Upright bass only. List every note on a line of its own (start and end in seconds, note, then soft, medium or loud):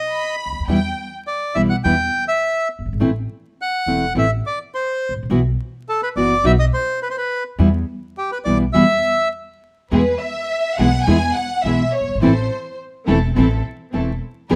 0.46 0.52 C#2 soft
0.53 0.59 D2 soft
0.60 0.67 D#2 medium
0.68 0.92 E2 medium
1.56 1.80 B1 medium
1.85 2.09 E2 medium
2.79 2.85 F#1 soft
2.86 2.92 G1 medium
2.93 3.00 G#1 medium
3.00 3.24 A1 medium
3.86 4.11 E1 soft
4.15 4.39 A1 medium
5.09 5.15 G#1 soft
5.16 5.22 A1 soft
5.23 5.29 A#1 medium
5.30 5.54 B1 medium
6.16 6.39 F#1 medium
6.44 6.68 B1 medium
7.59 7.83 E2 medium
8.46 8.70 B1 medium
8.75 8.99 E2 medium
9.91 10.16 E2 medium
10.79 11.03 B1 medium
11.07 11.31 E2 medium
11.64 11.88 B1 medium
12.01 12.07 F#1 medium
12.08 12.15 G1 medium
12.15 12.22 G#1 medium
12.22 12.46 A1 medium
13.08 13.32 E1 medium
13.36 13.60 A1 loud
13.94 14.18 E1 medium
14.51 14.55 G#1 medium